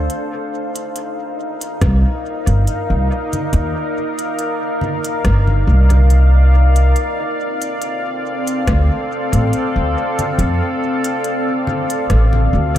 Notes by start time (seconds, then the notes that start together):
Already playing: D4 A4 C5 F5
0.10 D#4, closed hi-hat
0.76 closed hi-hat
0.80 A#4
0.96 closed hi-hat
1.07 D5
1.61 closed hi-hat
1.81 C2, kick, cross-stick, closed hi-hat
2.47 G1, closed hi-hat
2.67 closed hi-hat
2.90 C2
3.33 closed hi-hat, low conga
3.53 D#2, closed hi-hat
4.19 closed hi-hat
4.39 closed hi-hat
4.81 low conga
5.04 closed hi-hat
5.25 G1, kick, cross-stick, closed hi-hat
5.47 low conga
5.67 C2
5.90 closed hi-hat, low conga
6.10 closed hi-hat
6.76 closed hi-hat
6.96 C4, closed hi-hat
7.32 A4
7.62 closed hi-hat
7.82 closed hi-hat
8.47 closed hi-hat
8.67 D2, kick, cross-stick, closed hi-hat
9.33 A1, closed hi-hat
9.53 closed hi-hat
9.76 D2
10.19 closed hi-hat, low conga
10.38 F2, closed hi-hat
11.04 closed hi-hat
11.24 closed hi-hat
11.67 low conga
11.90 closed hi-hat
12.10 A1, kick, cross-stick, closed hi-hat
12.33 low conga
12.53 D2